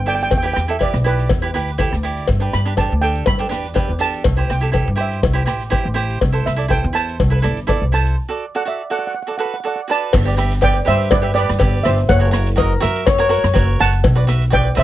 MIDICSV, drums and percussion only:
0, 0, Header, 1, 2, 480
1, 0, Start_track
1, 0, Tempo, 490196
1, 306, Time_signature, 4, 2, 24, 8
1, 14525, End_track
2, 0, Start_track
2, 0, Title_t, "Drums"
2, 78, Note_on_c, 9, 42, 75
2, 176, Note_off_c, 9, 42, 0
2, 204, Note_on_c, 9, 42, 61
2, 302, Note_off_c, 9, 42, 0
2, 305, Note_on_c, 9, 56, 76
2, 313, Note_on_c, 9, 36, 98
2, 316, Note_on_c, 9, 42, 58
2, 403, Note_off_c, 9, 56, 0
2, 411, Note_off_c, 9, 36, 0
2, 414, Note_off_c, 9, 42, 0
2, 551, Note_on_c, 9, 37, 80
2, 551, Note_on_c, 9, 42, 72
2, 649, Note_off_c, 9, 37, 0
2, 649, Note_off_c, 9, 42, 0
2, 682, Note_on_c, 9, 42, 63
2, 780, Note_off_c, 9, 42, 0
2, 790, Note_on_c, 9, 56, 62
2, 795, Note_on_c, 9, 36, 68
2, 797, Note_on_c, 9, 42, 45
2, 888, Note_off_c, 9, 56, 0
2, 893, Note_off_c, 9, 36, 0
2, 895, Note_off_c, 9, 42, 0
2, 919, Note_on_c, 9, 37, 72
2, 1017, Note_off_c, 9, 37, 0
2, 1040, Note_on_c, 9, 42, 67
2, 1137, Note_off_c, 9, 42, 0
2, 1167, Note_on_c, 9, 42, 60
2, 1265, Note_off_c, 9, 42, 0
2, 1267, Note_on_c, 9, 56, 76
2, 1277, Note_on_c, 9, 36, 101
2, 1277, Note_on_c, 9, 42, 59
2, 1365, Note_off_c, 9, 56, 0
2, 1375, Note_off_c, 9, 36, 0
2, 1375, Note_off_c, 9, 42, 0
2, 1518, Note_on_c, 9, 37, 73
2, 1518, Note_on_c, 9, 42, 76
2, 1616, Note_off_c, 9, 37, 0
2, 1616, Note_off_c, 9, 42, 0
2, 1646, Note_on_c, 9, 42, 60
2, 1743, Note_off_c, 9, 42, 0
2, 1749, Note_on_c, 9, 56, 60
2, 1758, Note_on_c, 9, 36, 79
2, 1759, Note_on_c, 9, 42, 55
2, 1847, Note_off_c, 9, 56, 0
2, 1856, Note_off_c, 9, 36, 0
2, 1857, Note_off_c, 9, 42, 0
2, 1886, Note_on_c, 9, 37, 61
2, 1984, Note_off_c, 9, 37, 0
2, 2003, Note_on_c, 9, 42, 74
2, 2101, Note_off_c, 9, 42, 0
2, 2128, Note_on_c, 9, 42, 56
2, 2226, Note_off_c, 9, 42, 0
2, 2228, Note_on_c, 9, 56, 72
2, 2241, Note_on_c, 9, 36, 91
2, 2242, Note_on_c, 9, 42, 52
2, 2326, Note_off_c, 9, 56, 0
2, 2339, Note_off_c, 9, 36, 0
2, 2340, Note_off_c, 9, 42, 0
2, 2483, Note_on_c, 9, 37, 81
2, 2483, Note_on_c, 9, 42, 75
2, 2581, Note_off_c, 9, 37, 0
2, 2581, Note_off_c, 9, 42, 0
2, 2606, Note_on_c, 9, 42, 59
2, 2704, Note_off_c, 9, 42, 0
2, 2713, Note_on_c, 9, 56, 65
2, 2715, Note_on_c, 9, 42, 47
2, 2719, Note_on_c, 9, 36, 65
2, 2811, Note_off_c, 9, 56, 0
2, 2813, Note_off_c, 9, 42, 0
2, 2817, Note_off_c, 9, 36, 0
2, 2966, Note_on_c, 9, 42, 64
2, 3064, Note_off_c, 9, 42, 0
2, 3088, Note_on_c, 9, 42, 55
2, 3186, Note_off_c, 9, 42, 0
2, 3191, Note_on_c, 9, 56, 77
2, 3203, Note_on_c, 9, 36, 98
2, 3203, Note_on_c, 9, 42, 55
2, 3289, Note_off_c, 9, 56, 0
2, 3301, Note_off_c, 9, 36, 0
2, 3301, Note_off_c, 9, 42, 0
2, 3446, Note_on_c, 9, 37, 81
2, 3446, Note_on_c, 9, 42, 77
2, 3544, Note_off_c, 9, 37, 0
2, 3544, Note_off_c, 9, 42, 0
2, 3573, Note_on_c, 9, 42, 58
2, 3671, Note_off_c, 9, 42, 0
2, 3679, Note_on_c, 9, 56, 73
2, 3684, Note_on_c, 9, 36, 85
2, 3684, Note_on_c, 9, 42, 59
2, 3776, Note_off_c, 9, 56, 0
2, 3782, Note_off_c, 9, 36, 0
2, 3782, Note_off_c, 9, 42, 0
2, 3925, Note_on_c, 9, 42, 77
2, 4023, Note_off_c, 9, 42, 0
2, 4050, Note_on_c, 9, 42, 56
2, 4148, Note_off_c, 9, 42, 0
2, 4155, Note_on_c, 9, 56, 97
2, 4161, Note_on_c, 9, 42, 57
2, 4163, Note_on_c, 9, 36, 106
2, 4253, Note_off_c, 9, 56, 0
2, 4259, Note_off_c, 9, 42, 0
2, 4261, Note_off_c, 9, 36, 0
2, 4405, Note_on_c, 9, 37, 81
2, 4405, Note_on_c, 9, 42, 81
2, 4503, Note_off_c, 9, 37, 0
2, 4503, Note_off_c, 9, 42, 0
2, 4531, Note_on_c, 9, 42, 61
2, 4629, Note_off_c, 9, 42, 0
2, 4638, Note_on_c, 9, 56, 67
2, 4645, Note_on_c, 9, 36, 68
2, 4645, Note_on_c, 9, 42, 55
2, 4736, Note_off_c, 9, 56, 0
2, 4743, Note_off_c, 9, 36, 0
2, 4743, Note_off_c, 9, 42, 0
2, 4883, Note_on_c, 9, 42, 74
2, 4981, Note_off_c, 9, 42, 0
2, 5009, Note_on_c, 9, 42, 57
2, 5107, Note_off_c, 9, 42, 0
2, 5121, Note_on_c, 9, 42, 59
2, 5123, Note_on_c, 9, 36, 106
2, 5124, Note_on_c, 9, 56, 75
2, 5218, Note_off_c, 9, 42, 0
2, 5221, Note_off_c, 9, 36, 0
2, 5222, Note_off_c, 9, 56, 0
2, 5360, Note_on_c, 9, 37, 81
2, 5360, Note_on_c, 9, 42, 83
2, 5458, Note_off_c, 9, 37, 0
2, 5458, Note_off_c, 9, 42, 0
2, 5488, Note_on_c, 9, 42, 60
2, 5586, Note_off_c, 9, 42, 0
2, 5597, Note_on_c, 9, 56, 63
2, 5603, Note_on_c, 9, 42, 60
2, 5606, Note_on_c, 9, 36, 84
2, 5695, Note_off_c, 9, 56, 0
2, 5701, Note_off_c, 9, 42, 0
2, 5704, Note_off_c, 9, 36, 0
2, 5850, Note_on_c, 9, 42, 67
2, 5948, Note_off_c, 9, 42, 0
2, 5974, Note_on_c, 9, 42, 51
2, 6072, Note_off_c, 9, 42, 0
2, 6084, Note_on_c, 9, 56, 69
2, 6089, Note_on_c, 9, 36, 99
2, 6093, Note_on_c, 9, 42, 53
2, 6182, Note_off_c, 9, 56, 0
2, 6187, Note_off_c, 9, 36, 0
2, 6191, Note_off_c, 9, 42, 0
2, 6336, Note_on_c, 9, 37, 79
2, 6336, Note_on_c, 9, 42, 78
2, 6434, Note_off_c, 9, 37, 0
2, 6434, Note_off_c, 9, 42, 0
2, 6454, Note_on_c, 9, 42, 61
2, 6552, Note_off_c, 9, 42, 0
2, 6565, Note_on_c, 9, 56, 57
2, 6567, Note_on_c, 9, 42, 44
2, 6568, Note_on_c, 9, 36, 74
2, 6662, Note_off_c, 9, 56, 0
2, 6665, Note_off_c, 9, 42, 0
2, 6666, Note_off_c, 9, 36, 0
2, 6816, Note_on_c, 9, 42, 68
2, 6913, Note_off_c, 9, 42, 0
2, 6940, Note_on_c, 9, 42, 59
2, 7038, Note_off_c, 9, 42, 0
2, 7049, Note_on_c, 9, 56, 69
2, 7050, Note_on_c, 9, 36, 113
2, 7050, Note_on_c, 9, 42, 53
2, 7147, Note_off_c, 9, 36, 0
2, 7147, Note_off_c, 9, 56, 0
2, 7148, Note_off_c, 9, 42, 0
2, 7288, Note_on_c, 9, 37, 80
2, 7288, Note_on_c, 9, 42, 68
2, 7386, Note_off_c, 9, 37, 0
2, 7386, Note_off_c, 9, 42, 0
2, 7412, Note_on_c, 9, 42, 55
2, 7510, Note_off_c, 9, 42, 0
2, 7528, Note_on_c, 9, 56, 62
2, 7531, Note_on_c, 9, 36, 84
2, 7532, Note_on_c, 9, 42, 59
2, 7626, Note_off_c, 9, 56, 0
2, 7629, Note_off_c, 9, 36, 0
2, 7630, Note_off_c, 9, 42, 0
2, 7771, Note_on_c, 9, 42, 67
2, 7869, Note_off_c, 9, 42, 0
2, 7896, Note_on_c, 9, 42, 59
2, 7994, Note_off_c, 9, 42, 0
2, 9920, Note_on_c, 9, 56, 93
2, 9927, Note_on_c, 9, 49, 93
2, 9929, Note_on_c, 9, 36, 111
2, 10018, Note_off_c, 9, 56, 0
2, 10025, Note_off_c, 9, 49, 0
2, 10027, Note_off_c, 9, 36, 0
2, 10167, Note_on_c, 9, 37, 83
2, 10167, Note_on_c, 9, 42, 82
2, 10265, Note_off_c, 9, 37, 0
2, 10265, Note_off_c, 9, 42, 0
2, 10297, Note_on_c, 9, 42, 66
2, 10395, Note_off_c, 9, 42, 0
2, 10399, Note_on_c, 9, 56, 79
2, 10410, Note_on_c, 9, 36, 70
2, 10415, Note_on_c, 9, 42, 55
2, 10497, Note_off_c, 9, 56, 0
2, 10508, Note_off_c, 9, 36, 0
2, 10512, Note_off_c, 9, 42, 0
2, 10648, Note_on_c, 9, 37, 66
2, 10648, Note_on_c, 9, 42, 72
2, 10746, Note_off_c, 9, 37, 0
2, 10746, Note_off_c, 9, 42, 0
2, 10774, Note_on_c, 9, 42, 64
2, 10872, Note_off_c, 9, 42, 0
2, 10876, Note_on_c, 9, 56, 88
2, 10885, Note_on_c, 9, 37, 80
2, 10885, Note_on_c, 9, 42, 60
2, 10886, Note_on_c, 9, 36, 115
2, 10974, Note_off_c, 9, 56, 0
2, 10983, Note_off_c, 9, 37, 0
2, 10983, Note_off_c, 9, 42, 0
2, 10984, Note_off_c, 9, 36, 0
2, 11128, Note_on_c, 9, 42, 91
2, 11226, Note_off_c, 9, 42, 0
2, 11255, Note_on_c, 9, 37, 86
2, 11255, Note_on_c, 9, 42, 65
2, 11353, Note_off_c, 9, 37, 0
2, 11353, Note_off_c, 9, 42, 0
2, 11354, Note_on_c, 9, 56, 73
2, 11367, Note_on_c, 9, 36, 89
2, 11372, Note_on_c, 9, 42, 71
2, 11452, Note_off_c, 9, 56, 0
2, 11465, Note_off_c, 9, 36, 0
2, 11470, Note_off_c, 9, 42, 0
2, 11605, Note_on_c, 9, 37, 84
2, 11605, Note_on_c, 9, 42, 75
2, 11703, Note_off_c, 9, 37, 0
2, 11703, Note_off_c, 9, 42, 0
2, 11728, Note_on_c, 9, 42, 61
2, 11826, Note_off_c, 9, 42, 0
2, 11839, Note_on_c, 9, 56, 76
2, 11843, Note_on_c, 9, 36, 112
2, 11846, Note_on_c, 9, 42, 68
2, 11937, Note_off_c, 9, 56, 0
2, 11941, Note_off_c, 9, 36, 0
2, 11944, Note_off_c, 9, 42, 0
2, 12077, Note_on_c, 9, 37, 96
2, 12077, Note_on_c, 9, 42, 90
2, 12175, Note_off_c, 9, 37, 0
2, 12175, Note_off_c, 9, 42, 0
2, 12205, Note_on_c, 9, 42, 75
2, 12303, Note_off_c, 9, 42, 0
2, 12319, Note_on_c, 9, 56, 77
2, 12320, Note_on_c, 9, 36, 79
2, 12320, Note_on_c, 9, 42, 53
2, 12417, Note_off_c, 9, 56, 0
2, 12418, Note_off_c, 9, 36, 0
2, 12418, Note_off_c, 9, 42, 0
2, 12557, Note_on_c, 9, 37, 73
2, 12557, Note_on_c, 9, 42, 82
2, 12655, Note_off_c, 9, 37, 0
2, 12655, Note_off_c, 9, 42, 0
2, 12689, Note_on_c, 9, 42, 66
2, 12786, Note_off_c, 9, 42, 0
2, 12794, Note_on_c, 9, 56, 88
2, 12800, Note_on_c, 9, 37, 81
2, 12800, Note_on_c, 9, 42, 70
2, 12801, Note_on_c, 9, 36, 115
2, 12892, Note_off_c, 9, 56, 0
2, 12898, Note_off_c, 9, 37, 0
2, 12898, Note_off_c, 9, 42, 0
2, 12899, Note_off_c, 9, 36, 0
2, 13037, Note_on_c, 9, 42, 85
2, 13135, Note_off_c, 9, 42, 0
2, 13161, Note_on_c, 9, 37, 88
2, 13161, Note_on_c, 9, 42, 66
2, 13259, Note_off_c, 9, 37, 0
2, 13259, Note_off_c, 9, 42, 0
2, 13271, Note_on_c, 9, 56, 67
2, 13274, Note_on_c, 9, 42, 63
2, 13276, Note_on_c, 9, 36, 96
2, 13369, Note_off_c, 9, 56, 0
2, 13371, Note_off_c, 9, 42, 0
2, 13374, Note_off_c, 9, 36, 0
2, 13511, Note_on_c, 9, 42, 84
2, 13609, Note_off_c, 9, 42, 0
2, 13637, Note_on_c, 9, 42, 63
2, 13735, Note_off_c, 9, 42, 0
2, 13747, Note_on_c, 9, 42, 64
2, 13747, Note_on_c, 9, 56, 75
2, 13752, Note_on_c, 9, 36, 106
2, 13845, Note_off_c, 9, 42, 0
2, 13845, Note_off_c, 9, 56, 0
2, 13850, Note_off_c, 9, 36, 0
2, 13988, Note_on_c, 9, 37, 85
2, 13988, Note_on_c, 9, 42, 84
2, 14086, Note_off_c, 9, 37, 0
2, 14086, Note_off_c, 9, 42, 0
2, 14114, Note_on_c, 9, 42, 66
2, 14212, Note_off_c, 9, 42, 0
2, 14226, Note_on_c, 9, 42, 54
2, 14228, Note_on_c, 9, 56, 74
2, 14230, Note_on_c, 9, 36, 80
2, 14324, Note_off_c, 9, 42, 0
2, 14326, Note_off_c, 9, 56, 0
2, 14328, Note_off_c, 9, 36, 0
2, 14462, Note_on_c, 9, 37, 72
2, 14462, Note_on_c, 9, 42, 73
2, 14525, Note_off_c, 9, 37, 0
2, 14525, Note_off_c, 9, 42, 0
2, 14525, End_track
0, 0, End_of_file